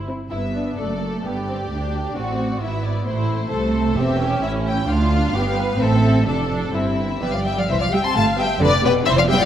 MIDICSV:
0, 0, Header, 1, 6, 480
1, 0, Start_track
1, 0, Key_signature, 1, "major"
1, 0, Tempo, 456621
1, 336, Time_signature, 2, 2, 24, 8
1, 4166, Key_signature, 0, "major"
1, 6083, Tempo, 476948
1, 8003, Tempo, 455581
1, 9856, End_track
2, 0, Start_track
2, 0, Title_t, "Violin section"
2, 0, Program_c, 0, 48
2, 329, Note_on_c, 0, 76, 43
2, 788, Note_off_c, 0, 76, 0
2, 834, Note_on_c, 0, 74, 44
2, 1297, Note_off_c, 0, 74, 0
2, 1310, Note_on_c, 0, 74, 47
2, 2711, Note_off_c, 0, 74, 0
2, 2751, Note_on_c, 0, 76, 50
2, 2982, Note_off_c, 0, 76, 0
2, 2986, Note_on_c, 0, 74, 55
2, 3219, Note_off_c, 0, 74, 0
2, 3229, Note_on_c, 0, 72, 57
2, 4154, Note_off_c, 0, 72, 0
2, 4185, Note_on_c, 0, 76, 60
2, 4636, Note_off_c, 0, 76, 0
2, 4648, Note_on_c, 0, 76, 69
2, 4732, Note_off_c, 0, 76, 0
2, 4906, Note_on_c, 0, 79, 67
2, 5127, Note_off_c, 0, 79, 0
2, 5138, Note_on_c, 0, 77, 71
2, 6094, Note_off_c, 0, 77, 0
2, 6098, Note_on_c, 0, 76, 67
2, 6556, Note_on_c, 0, 74, 56
2, 6561, Note_off_c, 0, 76, 0
2, 7031, Note_on_c, 0, 76, 52
2, 7038, Note_off_c, 0, 74, 0
2, 7509, Note_off_c, 0, 76, 0
2, 7520, Note_on_c, 0, 76, 72
2, 7525, Note_on_c, 0, 74, 53
2, 7630, Note_on_c, 0, 77, 70
2, 7634, Note_off_c, 0, 76, 0
2, 7755, Note_on_c, 0, 79, 65
2, 7759, Note_off_c, 0, 77, 0
2, 7799, Note_off_c, 0, 74, 0
2, 7878, Note_off_c, 0, 79, 0
2, 7888, Note_on_c, 0, 77, 63
2, 8005, Note_off_c, 0, 77, 0
2, 8011, Note_on_c, 0, 76, 90
2, 8126, Note_on_c, 0, 77, 71
2, 8130, Note_off_c, 0, 76, 0
2, 8246, Note_off_c, 0, 77, 0
2, 8263, Note_on_c, 0, 79, 73
2, 8377, Note_off_c, 0, 79, 0
2, 8377, Note_on_c, 0, 84, 88
2, 8494, Note_on_c, 0, 81, 97
2, 8495, Note_off_c, 0, 84, 0
2, 8579, Note_off_c, 0, 81, 0
2, 8732, Note_on_c, 0, 79, 81
2, 8969, Note_off_c, 0, 79, 0
2, 8976, Note_on_c, 0, 74, 112
2, 9210, Note_off_c, 0, 74, 0
2, 9220, Note_on_c, 0, 71, 97
2, 9304, Note_off_c, 0, 71, 0
2, 9441, Note_on_c, 0, 76, 111
2, 9490, Note_off_c, 0, 76, 0
2, 9571, Note_on_c, 0, 77, 84
2, 9617, Note_off_c, 0, 77, 0
2, 9682, Note_on_c, 0, 79, 98
2, 9801, Note_off_c, 0, 79, 0
2, 9812, Note_on_c, 0, 77, 97
2, 9856, Note_off_c, 0, 77, 0
2, 9856, End_track
3, 0, Start_track
3, 0, Title_t, "Violin section"
3, 0, Program_c, 1, 48
3, 319, Note_on_c, 1, 64, 53
3, 403, Note_off_c, 1, 64, 0
3, 563, Note_on_c, 1, 62, 45
3, 812, Note_off_c, 1, 62, 0
3, 815, Note_on_c, 1, 69, 42
3, 1302, Note_off_c, 1, 69, 0
3, 1303, Note_on_c, 1, 67, 49
3, 2263, Note_off_c, 1, 67, 0
3, 2277, Note_on_c, 1, 66, 52
3, 2735, Note_off_c, 1, 66, 0
3, 2744, Note_on_c, 1, 64, 48
3, 3196, Note_off_c, 1, 64, 0
3, 3208, Note_on_c, 1, 64, 60
3, 3675, Note_on_c, 1, 69, 55
3, 3677, Note_off_c, 1, 64, 0
3, 4148, Note_off_c, 1, 69, 0
3, 4170, Note_on_c, 1, 67, 66
3, 4637, Note_on_c, 1, 64, 59
3, 4644, Note_off_c, 1, 67, 0
3, 5116, Note_off_c, 1, 64, 0
3, 5130, Note_on_c, 1, 65, 72
3, 5599, Note_off_c, 1, 65, 0
3, 5610, Note_on_c, 1, 67, 63
3, 5847, Note_off_c, 1, 67, 0
3, 5857, Note_on_c, 1, 71, 66
3, 6091, Note_off_c, 1, 71, 0
3, 6110, Note_on_c, 1, 69, 72
3, 6555, Note_off_c, 1, 69, 0
3, 6567, Note_on_c, 1, 69, 58
3, 7033, Note_off_c, 1, 69, 0
3, 7046, Note_on_c, 1, 64, 55
3, 7519, Note_on_c, 1, 67, 50
3, 7520, Note_on_c, 1, 71, 57
3, 7527, Note_off_c, 1, 64, 0
3, 7634, Note_off_c, 1, 71, 0
3, 7645, Note_on_c, 1, 74, 51
3, 7760, Note_on_c, 1, 76, 63
3, 7766, Note_off_c, 1, 74, 0
3, 7797, Note_off_c, 1, 67, 0
3, 7884, Note_off_c, 1, 76, 0
3, 7885, Note_on_c, 1, 74, 52
3, 7933, Note_off_c, 1, 74, 0
3, 8009, Note_on_c, 1, 72, 80
3, 8057, Note_off_c, 1, 72, 0
3, 8122, Note_on_c, 1, 74, 67
3, 8172, Note_off_c, 1, 74, 0
3, 8256, Note_on_c, 1, 76, 65
3, 8363, Note_on_c, 1, 81, 66
3, 8371, Note_off_c, 1, 76, 0
3, 8485, Note_off_c, 1, 81, 0
3, 8503, Note_on_c, 1, 77, 81
3, 8740, Note_off_c, 1, 77, 0
3, 8745, Note_on_c, 1, 76, 71
3, 8981, Note_off_c, 1, 76, 0
3, 8994, Note_on_c, 1, 71, 104
3, 9078, Note_off_c, 1, 71, 0
3, 9224, Note_on_c, 1, 67, 84
3, 9308, Note_off_c, 1, 67, 0
3, 9462, Note_on_c, 1, 72, 104
3, 9564, Note_on_c, 1, 74, 57
3, 9572, Note_off_c, 1, 72, 0
3, 9678, Note_on_c, 1, 76, 95
3, 9685, Note_off_c, 1, 74, 0
3, 9788, Note_on_c, 1, 74, 84
3, 9798, Note_off_c, 1, 76, 0
3, 9856, Note_off_c, 1, 74, 0
3, 9856, End_track
4, 0, Start_track
4, 0, Title_t, "Viola section"
4, 0, Program_c, 2, 48
4, 97, Note_on_c, 2, 64, 38
4, 99, Note_on_c, 2, 60, 40
4, 278, Note_off_c, 2, 64, 0
4, 280, Note_off_c, 2, 60, 0
4, 354, Note_on_c, 2, 59, 40
4, 801, Note_off_c, 2, 59, 0
4, 839, Note_on_c, 2, 57, 41
4, 1074, Note_off_c, 2, 57, 0
4, 1086, Note_on_c, 2, 57, 43
4, 1312, Note_off_c, 2, 57, 0
4, 1319, Note_on_c, 2, 59, 45
4, 1554, Note_off_c, 2, 59, 0
4, 1558, Note_on_c, 2, 60, 42
4, 1642, Note_off_c, 2, 60, 0
4, 1800, Note_on_c, 2, 62, 39
4, 2262, Note_off_c, 2, 62, 0
4, 2272, Note_on_c, 2, 60, 44
4, 2742, Note_off_c, 2, 60, 0
4, 2752, Note_on_c, 2, 59, 44
4, 3212, Note_off_c, 2, 59, 0
4, 3227, Note_on_c, 2, 57, 51
4, 3684, Note_off_c, 2, 57, 0
4, 3696, Note_on_c, 2, 57, 54
4, 4159, Note_off_c, 2, 57, 0
4, 4171, Note_on_c, 2, 60, 62
4, 4400, Note_on_c, 2, 61, 58
4, 4407, Note_off_c, 2, 60, 0
4, 5117, Note_off_c, 2, 61, 0
4, 5121, Note_on_c, 2, 62, 59
4, 5594, Note_off_c, 2, 62, 0
4, 5609, Note_on_c, 2, 59, 58
4, 6086, Note_on_c, 2, 60, 67
4, 6088, Note_off_c, 2, 59, 0
4, 6309, Note_off_c, 2, 60, 0
4, 6321, Note_on_c, 2, 60, 66
4, 6552, Note_off_c, 2, 60, 0
4, 6560, Note_on_c, 2, 62, 56
4, 6792, Note_off_c, 2, 62, 0
4, 6803, Note_on_c, 2, 62, 59
4, 7033, Note_on_c, 2, 60, 46
4, 7036, Note_off_c, 2, 62, 0
4, 7510, Note_off_c, 2, 60, 0
4, 7528, Note_on_c, 2, 59, 43
4, 7609, Note_off_c, 2, 59, 0
4, 8247, Note_on_c, 2, 67, 57
4, 8252, Note_on_c, 2, 55, 66
4, 8428, Note_off_c, 2, 67, 0
4, 8431, Note_off_c, 2, 55, 0
4, 8731, Note_on_c, 2, 59, 67
4, 8734, Note_on_c, 2, 67, 63
4, 8912, Note_off_c, 2, 59, 0
4, 8914, Note_off_c, 2, 67, 0
4, 9217, Note_on_c, 2, 67, 75
4, 9218, Note_on_c, 2, 59, 73
4, 9392, Note_off_c, 2, 59, 0
4, 9392, Note_off_c, 2, 67, 0
4, 9683, Note_on_c, 2, 67, 76
4, 9687, Note_on_c, 2, 59, 82
4, 9856, Note_off_c, 2, 59, 0
4, 9856, Note_off_c, 2, 67, 0
4, 9856, End_track
5, 0, Start_track
5, 0, Title_t, "Cello section"
5, 0, Program_c, 3, 48
5, 0, Note_on_c, 3, 43, 47
5, 233, Note_off_c, 3, 43, 0
5, 338, Note_on_c, 3, 43, 53
5, 793, Note_off_c, 3, 43, 0
5, 831, Note_on_c, 3, 42, 47
5, 1301, Note_off_c, 3, 42, 0
5, 1316, Note_on_c, 3, 43, 57
5, 1783, Note_off_c, 3, 43, 0
5, 1792, Note_on_c, 3, 38, 50
5, 2258, Note_off_c, 3, 38, 0
5, 2271, Note_on_c, 3, 45, 55
5, 2732, Note_off_c, 3, 45, 0
5, 2739, Note_on_c, 3, 44, 48
5, 3205, Note_off_c, 3, 44, 0
5, 3217, Note_on_c, 3, 45, 63
5, 3681, Note_off_c, 3, 45, 0
5, 3690, Note_on_c, 3, 48, 64
5, 4156, Note_off_c, 3, 48, 0
5, 4163, Note_on_c, 3, 40, 75
5, 4639, Note_on_c, 3, 45, 62
5, 4641, Note_off_c, 3, 40, 0
5, 5107, Note_off_c, 3, 45, 0
5, 5125, Note_on_c, 3, 38, 79
5, 5596, Note_off_c, 3, 38, 0
5, 5601, Note_on_c, 3, 43, 68
5, 6074, Note_off_c, 3, 43, 0
5, 6087, Note_on_c, 3, 45, 78
5, 6547, Note_off_c, 3, 45, 0
5, 6555, Note_on_c, 3, 41, 64
5, 7031, Note_on_c, 3, 43, 64
5, 7037, Note_off_c, 3, 41, 0
5, 7505, Note_off_c, 3, 43, 0
5, 7514, Note_on_c, 3, 52, 55
5, 7517, Note_on_c, 3, 43, 52
5, 7565, Note_off_c, 3, 52, 0
5, 7636, Note_on_c, 3, 53, 51
5, 7759, Note_off_c, 3, 53, 0
5, 7760, Note_on_c, 3, 55, 62
5, 7881, Note_off_c, 3, 55, 0
5, 7881, Note_on_c, 3, 53, 57
5, 7993, Note_off_c, 3, 43, 0
5, 8000, Note_on_c, 3, 52, 78
5, 8002, Note_off_c, 3, 53, 0
5, 8122, Note_off_c, 3, 52, 0
5, 8130, Note_on_c, 3, 53, 63
5, 8178, Note_off_c, 3, 53, 0
5, 8244, Note_on_c, 3, 55, 71
5, 8294, Note_off_c, 3, 55, 0
5, 8366, Note_on_c, 3, 60, 63
5, 8487, Note_off_c, 3, 60, 0
5, 8489, Note_on_c, 3, 57, 78
5, 8573, Note_off_c, 3, 57, 0
5, 8730, Note_on_c, 3, 55, 68
5, 8814, Note_off_c, 3, 55, 0
5, 8968, Note_on_c, 3, 50, 101
5, 9052, Note_off_c, 3, 50, 0
5, 9211, Note_on_c, 3, 47, 88
5, 9445, Note_off_c, 3, 47, 0
5, 9454, Note_on_c, 3, 52, 97
5, 9570, Note_off_c, 3, 52, 0
5, 9570, Note_on_c, 3, 53, 67
5, 9688, Note_off_c, 3, 53, 0
5, 9689, Note_on_c, 3, 55, 102
5, 9736, Note_off_c, 3, 55, 0
5, 9811, Note_on_c, 3, 53, 84
5, 9856, Note_off_c, 3, 53, 0
5, 9856, End_track
6, 0, Start_track
6, 0, Title_t, "Double bass section"
6, 0, Program_c, 4, 48
6, 0, Note_on_c, 4, 31, 47
6, 227, Note_off_c, 4, 31, 0
6, 326, Note_on_c, 4, 31, 45
6, 786, Note_off_c, 4, 31, 0
6, 819, Note_on_c, 4, 30, 42
6, 1295, Note_off_c, 4, 30, 0
6, 1301, Note_on_c, 4, 31, 49
6, 1776, Note_off_c, 4, 31, 0
6, 1788, Note_on_c, 4, 38, 47
6, 2256, Note_off_c, 4, 38, 0
6, 2263, Note_on_c, 4, 33, 49
6, 2728, Note_off_c, 4, 33, 0
6, 2736, Note_on_c, 4, 32, 55
6, 3204, Note_off_c, 4, 32, 0
6, 3216, Note_on_c, 4, 33, 53
6, 3680, Note_off_c, 4, 33, 0
6, 3690, Note_on_c, 4, 36, 61
6, 4156, Note_off_c, 4, 36, 0
6, 4165, Note_on_c, 4, 28, 69
6, 4642, Note_off_c, 4, 28, 0
6, 4643, Note_on_c, 4, 33, 75
6, 5110, Note_off_c, 4, 33, 0
6, 5115, Note_on_c, 4, 38, 73
6, 5591, Note_off_c, 4, 38, 0
6, 5598, Note_on_c, 4, 31, 64
6, 6072, Note_off_c, 4, 31, 0
6, 6078, Note_on_c, 4, 33, 75
6, 6542, Note_off_c, 4, 33, 0
6, 6549, Note_on_c, 4, 29, 65
6, 7029, Note_on_c, 4, 31, 58
6, 7034, Note_off_c, 4, 29, 0
6, 7508, Note_off_c, 4, 31, 0
6, 7520, Note_on_c, 4, 31, 52
6, 7994, Note_off_c, 4, 31, 0
6, 8002, Note_on_c, 4, 36, 71
6, 8388, Note_off_c, 4, 36, 0
6, 8487, Note_on_c, 4, 31, 77
6, 8872, Note_off_c, 4, 31, 0
6, 8971, Note_on_c, 4, 29, 88
6, 9350, Note_off_c, 4, 29, 0
6, 9449, Note_on_c, 4, 29, 88
6, 9824, Note_off_c, 4, 29, 0
6, 9856, End_track
0, 0, End_of_file